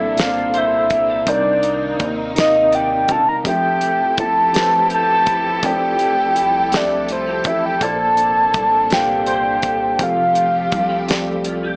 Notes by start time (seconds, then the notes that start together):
Already playing: C2 A#2 C3 F3 A#3 C4 D4 A4 D5 E5
0.17 A#2 A#3 C4 D4 A4 C5 F5, snare, closed hi-hat
0.27 D5
0.54 C5 E5, closed hi-hat
0.90 G4, kick, closed hi-hat
1.09 A4
1.25 C2 C3 D#3 C4 D#4 A#4 C#5, kick, closed hi-hat
1.29 D5
1.35 D5
1.63 D#4, closed hi-hat
1.99 D#2 A#4, kick, closed hi-hat
2.34 C3 C4 D#4 A#4 D#5, snare, closed hi-hat
2.39 D#5
2.44 F5
2.72 D5 G5, closed hi-hat
3.08 E1 A#4 A5, kick, closed hi-hat
3.29 A#5
3.44 F1 F3 C4 E4 G4 A4 E5, kick, closed hi-hat
3.48 G5
3.81 A3, closed hi-hat
4.17 G1 E4 A5, kick, closed hi-hat
4.53 F3 A3 C4 G4 A4 B4, snare, closed hi-hat
4.62 C5
4.89 G4, closed hi-hat
4.94 A5
5.26 E4, kick, closed hi-hat
5.62 F1 F3 C4 G4 A4 D5 G5, kick, closed hi-hat
5.99 A3, closed hi-hat
6.34 C2 E4, closed hi-hat
6.70 F3 A3 C4 G4 A4, snare, closed hi-hat
6.75 D5 E5
7.07 F4, closed hi-hat
7.12 C5
7.26 G4
7.44 A1 E4 E5, kick, closed hi-hat
7.66 G5
7.81 A#1 A#2 C3 A#3 D4 A4 C5 D5 A5, kick, closed hi-hat
8.17 D4, closed hi-hat
8.54 C2 A4, kick, closed hi-hat
8.90 A#2 A#3 D4 A4 C5 F5 G5, snare, closed hi-hat
9.26 C5, closed hi-hat
9.62 A4, kick, closed hi-hat
9.99 F1 F3 C4 G4 A4 F5, kick, closed hi-hat
10.03 F5
10.35 A3, closed hi-hat
10.71 C2 D4, kick, closed hi-hat
10.89 E4
11.08 F3 A3 C4 G4 A4 D5, snare, closed hi-hat
11.44 F4, closed hi-hat
11.63 G4